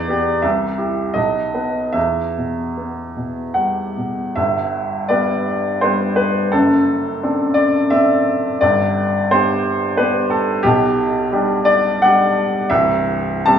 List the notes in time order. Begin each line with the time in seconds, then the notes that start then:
Already playing: E2 D5
0.08 B3 G4
0.42 C2 E5
0.78 E4 G4
1.14 B1 D#5
1.54 B3 B4
1.93 E2 E5
2.38 B2
2.77 B3
3.17 B2
3.54 G3 F#5
3.97 B2
4.36 G1 G2 E5
5.09 G3 B3 B4 D5
5.81 G3 B3 B4 C5
6.16 B4
6.52 F#1 F#2 A4
7.23 C4 D4 A4
7.54 D5
7.90 C4 D4 A4 E5
8.61 G1 G2 D5
9.31 B3 D4 G4 C5
9.97 B3 D4 G4 B4
10.30 A4
10.63 B1 B2 G4
11.32 G3 D4 G4
11.65 D5
12.02 G3 D4 G4 F#5
12.70 C1 C2 E5
13.46 G3 C4 G4 A5